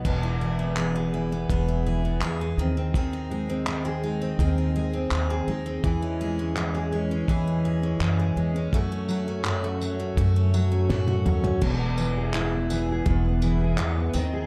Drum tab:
CC |x---------------|----------------|----------------|----------------|
TB |----------------|----------------|----------------|--x---x---x-----|
CP |----x-------x---|----x-------x---|----x-------x---|----x-----------|
SD |----------------|----------------|----------------|------------o---|
T1 |----------------|----------------|----------------|-------------o--|
T2 |----------------|----------------|----------------|--------------o-|
FT |----------------|----------------|----------------|---------------o|
BD |o-------o-------|o-------o-------|o-------o-------|o-------o-------|

CC |x---------------|
TB |--x---x---x---x-|
CP |----x-------x---|
SD |----------------|
T1 |----------------|
T2 |----------------|
FT |----------------|
BD |o-------o-------|